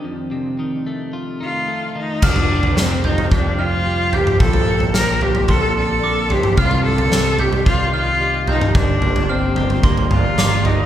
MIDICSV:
0, 0, Header, 1, 7, 480
1, 0, Start_track
1, 0, Tempo, 543971
1, 41, Time_signature, 4, 2, 24, 8
1, 9581, End_track
2, 0, Start_track
2, 0, Title_t, "Glockenspiel"
2, 0, Program_c, 0, 9
2, 1967, Note_on_c, 0, 89, 68
2, 2446, Note_off_c, 0, 89, 0
2, 2689, Note_on_c, 0, 91, 53
2, 3165, Note_on_c, 0, 89, 55
2, 3167, Note_off_c, 0, 91, 0
2, 3642, Note_on_c, 0, 91, 56
2, 3645, Note_off_c, 0, 89, 0
2, 4124, Note_off_c, 0, 91, 0
2, 4360, Note_on_c, 0, 89, 56
2, 4840, Note_on_c, 0, 84, 62
2, 4843, Note_off_c, 0, 89, 0
2, 5322, Note_off_c, 0, 84, 0
2, 5326, Note_on_c, 0, 86, 62
2, 5802, Note_on_c, 0, 89, 73
2, 5805, Note_off_c, 0, 86, 0
2, 6283, Note_off_c, 0, 89, 0
2, 6524, Note_on_c, 0, 91, 58
2, 7002, Note_on_c, 0, 89, 59
2, 7004, Note_off_c, 0, 91, 0
2, 7483, Note_off_c, 0, 89, 0
2, 7483, Note_on_c, 0, 91, 55
2, 7963, Note_off_c, 0, 91, 0
2, 8202, Note_on_c, 0, 89, 63
2, 8678, Note_on_c, 0, 84, 62
2, 8682, Note_off_c, 0, 89, 0
2, 9160, Note_off_c, 0, 84, 0
2, 9164, Note_on_c, 0, 86, 65
2, 9581, Note_off_c, 0, 86, 0
2, 9581, End_track
3, 0, Start_track
3, 0, Title_t, "Ambient pad"
3, 0, Program_c, 1, 92
3, 0, Note_on_c, 1, 51, 62
3, 46, Note_on_c, 1, 41, 64
3, 47, Note_on_c, 1, 57, 71
3, 1931, Note_off_c, 1, 51, 0
3, 1947, Note_off_c, 1, 41, 0
3, 1948, Note_off_c, 1, 57, 0
3, 1962, Note_on_c, 1, 79, 80
3, 1963, Note_on_c, 1, 72, 60
3, 1966, Note_on_c, 1, 65, 66
3, 3865, Note_off_c, 1, 72, 0
3, 3865, Note_off_c, 1, 79, 0
3, 3866, Note_off_c, 1, 65, 0
3, 3885, Note_on_c, 1, 58, 70
3, 3885, Note_on_c, 1, 84, 72
3, 3888, Note_on_c, 1, 74, 64
3, 5786, Note_off_c, 1, 58, 0
3, 5787, Note_off_c, 1, 74, 0
3, 5811, Note_on_c, 1, 75, 65
3, 5814, Note_on_c, 1, 67, 66
3, 7688, Note_off_c, 1, 84, 0
3, 7707, Note_off_c, 1, 75, 0
3, 7718, Note_on_c, 1, 74, 66
3, 7718, Note_on_c, 1, 82, 77
3, 9581, Note_off_c, 1, 67, 0
3, 9581, Note_off_c, 1, 74, 0
3, 9581, Note_off_c, 1, 82, 0
3, 9581, End_track
4, 0, Start_track
4, 0, Title_t, "Cello"
4, 0, Program_c, 2, 42
4, 1264, Note_on_c, 2, 65, 60
4, 1701, Note_off_c, 2, 65, 0
4, 1749, Note_on_c, 2, 63, 68
4, 1979, Note_on_c, 2, 62, 78
4, 1993, Note_off_c, 2, 63, 0
4, 2470, Note_on_c, 2, 60, 65
4, 2483, Note_off_c, 2, 62, 0
4, 2697, Note_off_c, 2, 60, 0
4, 2704, Note_on_c, 2, 63, 72
4, 2918, Note_off_c, 2, 63, 0
4, 2944, Note_on_c, 2, 62, 67
4, 3190, Note_on_c, 2, 65, 75
4, 3203, Note_off_c, 2, 62, 0
4, 3657, Note_on_c, 2, 67, 74
4, 3671, Note_off_c, 2, 65, 0
4, 3891, Note_off_c, 2, 67, 0
4, 3901, Note_on_c, 2, 69, 87
4, 4340, Note_off_c, 2, 69, 0
4, 4377, Note_on_c, 2, 70, 76
4, 4610, Note_on_c, 2, 67, 71
4, 4623, Note_off_c, 2, 70, 0
4, 4858, Note_on_c, 2, 69, 80
4, 4871, Note_off_c, 2, 67, 0
4, 5091, Note_off_c, 2, 69, 0
4, 5098, Note_on_c, 2, 69, 81
4, 5573, Note_on_c, 2, 67, 80
4, 5586, Note_off_c, 2, 69, 0
4, 5809, Note_off_c, 2, 67, 0
4, 5813, Note_on_c, 2, 65, 80
4, 6032, Note_off_c, 2, 65, 0
4, 6050, Note_on_c, 2, 69, 87
4, 6533, Note_on_c, 2, 67, 76
4, 6547, Note_off_c, 2, 69, 0
4, 6764, Note_off_c, 2, 67, 0
4, 6769, Note_on_c, 2, 65, 77
4, 6990, Note_off_c, 2, 65, 0
4, 7011, Note_on_c, 2, 65, 77
4, 7453, Note_off_c, 2, 65, 0
4, 7491, Note_on_c, 2, 63, 73
4, 7711, Note_off_c, 2, 63, 0
4, 7729, Note_on_c, 2, 62, 84
4, 8203, Note_on_c, 2, 60, 73
4, 8216, Note_off_c, 2, 62, 0
4, 8685, Note_on_c, 2, 58, 67
4, 8698, Note_off_c, 2, 60, 0
4, 8918, Note_off_c, 2, 58, 0
4, 8923, Note_on_c, 2, 65, 74
4, 9407, Note_on_c, 2, 63, 68
4, 9420, Note_off_c, 2, 65, 0
4, 9581, Note_off_c, 2, 63, 0
4, 9581, End_track
5, 0, Start_track
5, 0, Title_t, "Clean electric guitar"
5, 0, Program_c, 3, 27
5, 38, Note_on_c, 3, 41, 47
5, 277, Note_on_c, 3, 48, 45
5, 521, Note_on_c, 3, 51, 46
5, 763, Note_on_c, 3, 57, 46
5, 999, Note_on_c, 3, 65, 54
5, 1240, Note_on_c, 3, 63, 46
5, 1241, Note_off_c, 3, 41, 0
5, 1471, Note_off_c, 3, 57, 0
5, 1481, Note_off_c, 3, 48, 0
5, 1482, Note_on_c, 3, 57, 44
5, 1714, Note_off_c, 3, 51, 0
5, 1724, Note_on_c, 3, 51, 49
5, 1962, Note_off_c, 3, 63, 0
5, 1962, Note_off_c, 3, 65, 0
5, 1963, Note_off_c, 3, 57, 0
5, 1964, Note_off_c, 3, 51, 0
5, 1968, Note_on_c, 3, 53, 51
5, 2211, Note_on_c, 3, 55, 53
5, 2445, Note_on_c, 3, 60, 50
5, 2684, Note_on_c, 3, 65, 53
5, 2918, Note_off_c, 3, 55, 0
5, 2929, Note_on_c, 3, 55, 55
5, 3157, Note_off_c, 3, 53, 0
5, 3168, Note_on_c, 3, 53, 51
5, 3393, Note_off_c, 3, 55, 0
5, 3403, Note_on_c, 3, 55, 53
5, 3642, Note_off_c, 3, 60, 0
5, 3645, Note_on_c, 3, 60, 51
5, 3884, Note_off_c, 3, 55, 0
5, 3885, Note_off_c, 3, 65, 0
5, 3886, Note_off_c, 3, 53, 0
5, 3889, Note_on_c, 3, 46, 55
5, 3916, Note_off_c, 3, 60, 0
5, 4126, Note_on_c, 3, 58, 54
5, 4373, Note_on_c, 3, 60, 52
5, 4609, Note_on_c, 3, 65, 52
5, 4840, Note_off_c, 3, 58, 0
5, 4851, Note_on_c, 3, 58, 54
5, 5087, Note_off_c, 3, 46, 0
5, 5097, Note_on_c, 3, 50, 52
5, 5317, Note_off_c, 3, 58, 0
5, 5328, Note_on_c, 3, 58, 56
5, 5558, Note_off_c, 3, 60, 0
5, 5569, Note_on_c, 3, 60, 58
5, 5806, Note_off_c, 3, 58, 0
5, 5806, Note_off_c, 3, 65, 0
5, 5806, Note_on_c, 3, 48, 56
5, 5807, Note_off_c, 3, 60, 0
5, 5810, Note_off_c, 3, 50, 0
5, 6049, Note_on_c, 3, 55, 56
5, 6279, Note_on_c, 3, 60, 55
5, 6524, Note_on_c, 3, 67, 57
5, 6762, Note_off_c, 3, 55, 0
5, 6765, Note_on_c, 3, 55, 61
5, 7002, Note_on_c, 3, 51, 56
5, 7004, Note_off_c, 3, 48, 0
5, 7240, Note_off_c, 3, 55, 0
5, 7244, Note_on_c, 3, 55, 58
5, 7481, Note_off_c, 3, 60, 0
5, 7490, Note_on_c, 3, 60, 52
5, 7722, Note_off_c, 3, 51, 0
5, 7724, Note_on_c, 3, 43, 58
5, 7727, Note_off_c, 3, 60, 0
5, 7957, Note_off_c, 3, 55, 0
5, 7961, Note_on_c, 3, 58, 57
5, 8206, Note_on_c, 3, 62, 56
5, 8441, Note_off_c, 3, 67, 0
5, 8444, Note_on_c, 3, 67, 62
5, 8672, Note_off_c, 3, 58, 0
5, 8682, Note_on_c, 3, 58, 58
5, 8922, Note_on_c, 3, 55, 53
5, 8923, Note_off_c, 3, 43, 0
5, 9153, Note_off_c, 3, 58, 0
5, 9164, Note_on_c, 3, 58, 54
5, 9390, Note_off_c, 3, 62, 0
5, 9401, Note_on_c, 3, 62, 53
5, 9581, Note_off_c, 3, 55, 0
5, 9581, Note_off_c, 3, 58, 0
5, 9581, Note_off_c, 3, 62, 0
5, 9581, Note_off_c, 3, 67, 0
5, 9581, End_track
6, 0, Start_track
6, 0, Title_t, "Picked electric bass"
6, 0, Program_c, 4, 34
6, 1966, Note_on_c, 4, 29, 58
6, 3851, Note_off_c, 4, 29, 0
6, 3885, Note_on_c, 4, 34, 57
6, 5769, Note_off_c, 4, 34, 0
6, 5800, Note_on_c, 4, 36, 60
6, 7686, Note_off_c, 4, 36, 0
6, 7720, Note_on_c, 4, 31, 60
6, 9581, Note_off_c, 4, 31, 0
6, 9581, End_track
7, 0, Start_track
7, 0, Title_t, "Drums"
7, 1961, Note_on_c, 9, 43, 68
7, 1961, Note_on_c, 9, 49, 72
7, 1964, Note_on_c, 9, 36, 89
7, 2050, Note_off_c, 9, 43, 0
7, 2050, Note_off_c, 9, 49, 0
7, 2052, Note_off_c, 9, 36, 0
7, 2081, Note_on_c, 9, 43, 63
7, 2169, Note_off_c, 9, 43, 0
7, 2321, Note_on_c, 9, 43, 62
7, 2409, Note_off_c, 9, 43, 0
7, 2445, Note_on_c, 9, 38, 59
7, 2533, Note_off_c, 9, 38, 0
7, 2683, Note_on_c, 9, 43, 59
7, 2771, Note_off_c, 9, 43, 0
7, 2806, Note_on_c, 9, 43, 64
7, 2895, Note_off_c, 9, 43, 0
7, 2924, Note_on_c, 9, 43, 60
7, 2926, Note_on_c, 9, 36, 75
7, 3012, Note_off_c, 9, 43, 0
7, 3014, Note_off_c, 9, 36, 0
7, 3643, Note_on_c, 9, 43, 66
7, 3731, Note_off_c, 9, 43, 0
7, 3767, Note_on_c, 9, 47, 64
7, 3855, Note_off_c, 9, 47, 0
7, 3884, Note_on_c, 9, 36, 93
7, 3885, Note_on_c, 9, 43, 65
7, 3973, Note_off_c, 9, 36, 0
7, 3973, Note_off_c, 9, 43, 0
7, 4001, Note_on_c, 9, 43, 64
7, 4089, Note_off_c, 9, 43, 0
7, 4238, Note_on_c, 9, 43, 59
7, 4326, Note_off_c, 9, 43, 0
7, 4360, Note_on_c, 9, 38, 62
7, 4448, Note_off_c, 9, 38, 0
7, 4598, Note_on_c, 9, 43, 58
7, 4687, Note_off_c, 9, 43, 0
7, 4719, Note_on_c, 9, 43, 61
7, 4807, Note_off_c, 9, 43, 0
7, 4838, Note_on_c, 9, 43, 66
7, 4842, Note_on_c, 9, 36, 72
7, 4926, Note_off_c, 9, 43, 0
7, 4930, Note_off_c, 9, 36, 0
7, 5561, Note_on_c, 9, 43, 68
7, 5649, Note_off_c, 9, 43, 0
7, 5677, Note_on_c, 9, 47, 65
7, 5766, Note_off_c, 9, 47, 0
7, 5801, Note_on_c, 9, 43, 68
7, 5803, Note_on_c, 9, 36, 86
7, 5889, Note_off_c, 9, 43, 0
7, 5891, Note_off_c, 9, 36, 0
7, 5921, Note_on_c, 9, 43, 65
7, 6009, Note_off_c, 9, 43, 0
7, 6162, Note_on_c, 9, 43, 67
7, 6250, Note_off_c, 9, 43, 0
7, 6281, Note_on_c, 9, 38, 65
7, 6369, Note_off_c, 9, 38, 0
7, 6517, Note_on_c, 9, 43, 64
7, 6605, Note_off_c, 9, 43, 0
7, 6640, Note_on_c, 9, 43, 60
7, 6729, Note_off_c, 9, 43, 0
7, 6762, Note_on_c, 9, 36, 78
7, 6762, Note_on_c, 9, 43, 64
7, 6850, Note_off_c, 9, 43, 0
7, 6851, Note_off_c, 9, 36, 0
7, 7478, Note_on_c, 9, 43, 66
7, 7566, Note_off_c, 9, 43, 0
7, 7602, Note_on_c, 9, 47, 66
7, 7690, Note_off_c, 9, 47, 0
7, 7720, Note_on_c, 9, 43, 71
7, 7721, Note_on_c, 9, 36, 97
7, 7808, Note_off_c, 9, 43, 0
7, 7809, Note_off_c, 9, 36, 0
7, 7958, Note_on_c, 9, 43, 57
7, 8046, Note_off_c, 9, 43, 0
7, 8082, Note_on_c, 9, 43, 68
7, 8170, Note_off_c, 9, 43, 0
7, 8437, Note_on_c, 9, 43, 67
7, 8525, Note_off_c, 9, 43, 0
7, 8559, Note_on_c, 9, 43, 56
7, 8648, Note_off_c, 9, 43, 0
7, 8678, Note_on_c, 9, 36, 82
7, 8680, Note_on_c, 9, 43, 64
7, 8767, Note_off_c, 9, 36, 0
7, 8768, Note_off_c, 9, 43, 0
7, 8801, Note_on_c, 9, 43, 61
7, 8890, Note_off_c, 9, 43, 0
7, 8919, Note_on_c, 9, 43, 61
7, 8919, Note_on_c, 9, 47, 62
7, 9007, Note_off_c, 9, 43, 0
7, 9007, Note_off_c, 9, 47, 0
7, 9159, Note_on_c, 9, 38, 63
7, 9159, Note_on_c, 9, 47, 61
7, 9247, Note_off_c, 9, 38, 0
7, 9247, Note_off_c, 9, 47, 0
7, 9398, Note_on_c, 9, 43, 64
7, 9486, Note_off_c, 9, 43, 0
7, 9581, End_track
0, 0, End_of_file